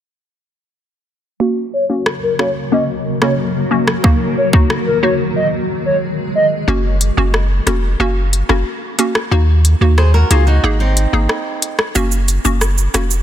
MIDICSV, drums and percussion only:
0, 0, Header, 1, 2, 480
1, 0, Start_track
1, 0, Tempo, 659341
1, 1021, Time_signature, 4, 2, 24, 8
1, 9629, End_track
2, 0, Start_track
2, 0, Title_t, "Drums"
2, 1501, Note_on_c, 9, 37, 76
2, 1574, Note_off_c, 9, 37, 0
2, 1742, Note_on_c, 9, 37, 83
2, 1815, Note_off_c, 9, 37, 0
2, 2342, Note_on_c, 9, 37, 84
2, 2415, Note_off_c, 9, 37, 0
2, 2821, Note_on_c, 9, 37, 89
2, 2894, Note_off_c, 9, 37, 0
2, 2941, Note_on_c, 9, 36, 107
2, 3014, Note_off_c, 9, 36, 0
2, 3300, Note_on_c, 9, 36, 98
2, 3372, Note_off_c, 9, 36, 0
2, 3422, Note_on_c, 9, 37, 77
2, 3495, Note_off_c, 9, 37, 0
2, 5102, Note_on_c, 9, 42, 72
2, 5175, Note_off_c, 9, 42, 0
2, 5343, Note_on_c, 9, 37, 78
2, 5416, Note_off_c, 9, 37, 0
2, 5583, Note_on_c, 9, 37, 83
2, 5583, Note_on_c, 9, 42, 79
2, 5656, Note_off_c, 9, 37, 0
2, 5656, Note_off_c, 9, 42, 0
2, 6064, Note_on_c, 9, 42, 65
2, 6137, Note_off_c, 9, 42, 0
2, 6184, Note_on_c, 9, 37, 86
2, 6257, Note_off_c, 9, 37, 0
2, 6542, Note_on_c, 9, 42, 72
2, 6615, Note_off_c, 9, 42, 0
2, 6662, Note_on_c, 9, 37, 91
2, 6735, Note_off_c, 9, 37, 0
2, 7024, Note_on_c, 9, 42, 71
2, 7096, Note_off_c, 9, 42, 0
2, 7264, Note_on_c, 9, 37, 82
2, 7337, Note_off_c, 9, 37, 0
2, 7503, Note_on_c, 9, 42, 78
2, 7576, Note_off_c, 9, 42, 0
2, 7984, Note_on_c, 9, 42, 70
2, 8057, Note_off_c, 9, 42, 0
2, 8222, Note_on_c, 9, 37, 88
2, 8295, Note_off_c, 9, 37, 0
2, 8462, Note_on_c, 9, 42, 79
2, 8535, Note_off_c, 9, 42, 0
2, 8581, Note_on_c, 9, 37, 93
2, 8654, Note_off_c, 9, 37, 0
2, 8702, Note_on_c, 9, 82, 68
2, 8775, Note_off_c, 9, 82, 0
2, 8821, Note_on_c, 9, 82, 59
2, 8894, Note_off_c, 9, 82, 0
2, 8942, Note_on_c, 9, 42, 66
2, 8942, Note_on_c, 9, 82, 51
2, 9015, Note_off_c, 9, 42, 0
2, 9015, Note_off_c, 9, 82, 0
2, 9064, Note_on_c, 9, 82, 62
2, 9137, Note_off_c, 9, 82, 0
2, 9182, Note_on_c, 9, 82, 67
2, 9183, Note_on_c, 9, 37, 81
2, 9255, Note_off_c, 9, 37, 0
2, 9255, Note_off_c, 9, 82, 0
2, 9303, Note_on_c, 9, 82, 49
2, 9376, Note_off_c, 9, 82, 0
2, 9423, Note_on_c, 9, 42, 79
2, 9423, Note_on_c, 9, 82, 56
2, 9424, Note_on_c, 9, 37, 85
2, 9496, Note_off_c, 9, 37, 0
2, 9496, Note_off_c, 9, 42, 0
2, 9496, Note_off_c, 9, 82, 0
2, 9542, Note_on_c, 9, 82, 70
2, 9615, Note_off_c, 9, 82, 0
2, 9629, End_track
0, 0, End_of_file